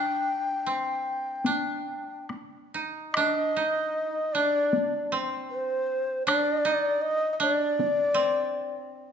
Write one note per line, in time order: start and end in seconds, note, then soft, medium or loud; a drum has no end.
0.00 0.21 C4 medium
0.00 1.46 D4 medium
0.00 2.26 G5 loud
0.66 3.26 C4 medium
1.44 2.80 D4 medium
1.44 taiko high medium
2.30 taiko rim soft
2.30 taiko high soft
2.74 3.23 D#4 medium
3.13 3.62 D4 medium
3.13 4.35 D#5 medium
3.13 taiko rim medium
3.56 4.41 D#4 medium
4.33 6.26 D4 medium
4.33 5.12 D5 medium
4.73 taiko high medium
5.12 7.72 C4 medium
5.50 6.24 C5 medium
6.27 6.71 D4 medium
6.27 7.03 D5 medium
6.27 taiko rim medium
6.65 7.46 D#4 medium
7.02 7.33 D#5 loud
7.33 7.44 D#5 medium
7.40 9.12 D4 medium
7.40 8.89 D5 loud
7.79 taiko high medium
8.14 9.12 C4 medium